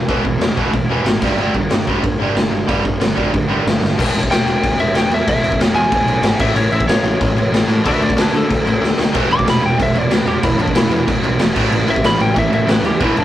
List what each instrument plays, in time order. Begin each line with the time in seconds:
0.08 picked electric bass E1, overdriven electric guitar E2 B2 E3, kick, crash
0.24 picked electric bass E1, overdriven electric guitar E2 B2, kick
0.38 picked electric bass E1, overdriven electric guitar E2 B2, snare, crash
0.56 picked electric bass E1, overdriven electric guitar E2 B2 E3, kick
0.73 picked electric bass E1, overdriven electric guitar E2 B2, kick, crash
0.88 picked electric bass E1, overdriven electric guitar E2 B2 E3
1.03 picked electric bass G#1, overdriven electric guitar E2 B2, snare, crash
1.22 picked electric bass G1, overdriven electric guitar G2 D3 G3, kick, crash
1.36 picked electric bass G1, overdriven electric guitar G2 D3 G3, crash
1.54 picked electric bass G1, overdriven electric guitar G2 D3, kick
1.69 picked electric bass G1, overdriven electric guitar G2 D3, snare, crash
1.87 picked electric bass G1, overdriven electric guitar G2 D3 G3, kick
2.02 picked electric bass G1, overdriven electric guitar G2 D3, kick, crash
2.18 picked electric bass G1, overdriven electric guitar G2 D3 G3
2.34 picked electric bass G1, overdriven electric guitar G2 D3, snare, crash
2.50 picked electric bass G1, overdriven electric guitar G2 D3
2.67 picked electric bass G1, overdriven electric guitar G2 D3 G3, kick, crash
2.83 picked electric bass G1, overdriven electric guitar G2 D3, kick
2.99 picked electric bass G1, overdriven electric guitar G2 D3, snare, crash
3.16 picked electric bass G1, overdriven electric guitar G2 D3 G3, kick
3.33 picked electric bass G1, overdriven electric guitar G2 D3, kick, crash
3.47 picked electric bass G1, overdriven electric guitar G2 D3 G3
3.65 picked electric bass G1, overdriven electric guitar G2 D3, snare, crash
3.81 picked electric bass G1, overdriven electric guitar G2 D3, snare
3.98 picked electric bass E1, overdriven electric guitar E2 B2 E3, kick, crash
4.13 picked electric bass E1, overdriven electric guitar E2 B2, crash
4.23 kick
4.30 picked electric bass E1, overdriven electric guitar E2 B2, lead electric guitar G5, snare, crash
4.44 picked electric bass E1, overdriven electric guitar E2 B2, crash
4.63 picked electric bass E1, overdriven electric guitar E2 B2, kick, crash
4.77 picked electric bass E1, overdriven electric guitar E2 B2, lead electric guitar E5, crash
4.93 picked electric bass E1, overdriven electric guitar E2 B2, snare, crash
4.98 lead electric guitar G5
5.10 picked electric bass E2, overdriven electric guitar E2 B2, crash
5.14 lead electric guitar E5
5.27 picked electric bass E1, overdriven electric guitar E2 B2, lead electric guitar E5, kick, crash
5.41 picked electric bass E1, overdriven electric guitar E2 B2, crash
5.52 kick
5.58 picked electric bass E1, overdriven electric guitar E2 B2, snare, crash
5.74 picked electric bass E2, overdriven electric guitar E2 B2, lead electric guitar G#5, crash
5.91 picked electric bass E1, overdriven electric guitar E2 B2, kick, crash
6.05 picked electric bass B1, overdriven electric guitar E2 B2, crash
6.20 picked electric bass G#1, overdriven electric guitar E2 B2, snare, crash
6.39 picked electric bass A1, overdriven electric guitar A2 E3 A3, lead electric guitar E5, kick, crash
6.55 picked electric bass A1, overdriven electric guitar A2 E3, lead electric guitar C#5, crash
6.71 picked electric bass A1, overdriven electric guitar A2 E3, lead electric guitar E5, crash
6.80 kick
6.87 picked electric bass A1, overdriven electric guitar A2 E3, lead electric guitar C#5, snare, crash
7.03 picked electric bass A1, overdriven electric guitar A2 E3, crash
7.20 picked electric bass A1, overdriven electric guitar A2 E3, kick, crash
7.34 picked electric bass A1, overdriven electric guitar A2 E3, crash
7.51 picked electric bass A1, overdriven electric guitar A2 E3, snare, crash
7.68 picked electric bass A2, overdriven electric guitar A2 E3, crash
7.84 picked electric bass D2, overdriven electric guitar D3 A3 D4, lead electric guitar B4, kick, crash
7.88 lead electric guitar E5
8.00 picked electric bass D2, overdriven electric guitar D3 A3, lead electric guitar F#4 D5, crash
8.10 kick
8.16 picked electric bass D2, overdriven electric guitar D3 A3, snare, crash
8.21 lead electric guitar D4 B4
8.33 overdriven electric guitar D3 A3, picked electric bass D3, crash
8.37 lead electric guitar A4
8.49 picked electric bass D2, overdriven electric guitar D3 A3, kick, crash
8.64 picked electric bass A1, overdriven electric guitar D3 A3, crash
8.81 picked electric bass D2, overdriven electric guitar D3 A3, snare
8.98 picked electric bass D2, overdriven electric guitar D3 A3, snare
9.12 picked electric bass E1, overdriven electric guitar E2 B2 E3, kick, splash, crash
9.29 picked electric bass E1, overdriven electric guitar E2 B2, lead electric guitar D6, crash
9.39 kick
9.45 picked electric bass E1, overdriven electric guitar E2 B2, snare, crash
9.50 lead electric guitar B5
9.61 picked electric bass E1, overdriven electric guitar E2 B2, crash
9.66 lead electric guitar G5
9.78 picked electric bass E1, overdriven electric guitar E2 B2, kick, crash
9.82 lead electric guitar E5
9.93 picked electric bass E1, overdriven electric guitar E2 B2, crash
9.98 lead electric guitar D5
10.09 picked electric bass E1, overdriven electric guitar E2 B2, snare, crash
10.13 lead electric guitar B4
10.26 picked electric bass E2, overdriven electric guitar E2 B2, lead electric guitar G4, crash
10.43 picked electric bass E1, overdriven electric guitar E2 B2, lead electric guitar E4, kick, crash
10.57 picked electric bass E1, overdriven electric guitar E2 B2, lead electric guitar D4, crash
10.67 kick
10.74 picked electric bass E1, overdriven electric guitar E2 B2, lead electric guitar E4, snare, crash
10.90 picked electric bass E2, overdriven electric guitar E2 B2, crash
11.07 picked electric bass E1, overdriven electric guitar E2 B2, kick, crash
11.23 picked electric bass B1, overdriven electric guitar E2 B2, crash
11.39 picked electric bass E1, overdriven electric guitar E2 B2, snare, crash
11.56 picked electric bass A1, overdriven electric guitar A2 E3 A3, kick, crash
11.71 picked electric bass A1, overdriven electric guitar A2 E3, crash
11.87 picked electric bass A1, overdriven electric guitar A2 E3, lead electric guitar E5, crash
11.96 kick
12.04 picked electric bass A1, overdriven electric guitar A2 E3, lead electric guitar B5, snare, crash
12.19 picked electric bass A1, overdriven electric guitar A2 E3, lead electric guitar G5, crash
12.36 picked electric bass A1, overdriven electric guitar A2 E3, lead electric guitar E5, kick, crash
12.51 picked electric bass A1, overdriven electric guitar A2 E3, lead electric guitar E5, crash
12.66 picked electric bass A1, overdriven electric guitar A2 E3, snare, crash
12.71 lead electric guitar B4
12.83 picked electric bass D#2, overdriven electric guitar A2 E3, lead electric guitar G4, crash
13.00 picked electric bass E1, overdriven electric guitar E2 B2 E3, kick, crash
13.05 lead electric guitar E4
13.16 picked electric bass E1, overdriven electric guitar E2 B2, lead electric guitar D4, crash